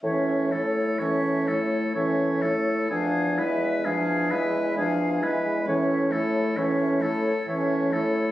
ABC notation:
X:1
M:3/4
L:1/8
Q:1/4=65
K:A
V:1 name="Flute"
e c e c e c | =f e f e f e | e c e c e c |]
V:2 name="Oboe"
c A c A c A | G B G B G B | c A c A c A |]
V:3 name="Clarinet"
C E C E C E | D E D E D E | C E C E C E |]
V:4 name="French horn" clef=bass
E, A, E, A, E, A, | =F, G, F, G, F, G, | E, A, E, A, E, A, |]
V:5 name="Bassoon" clef=bass
A,,2 A,,2 A,,2 | E,,2 E,,2 E,,2 | A,,2 A,,2 A,,2 |]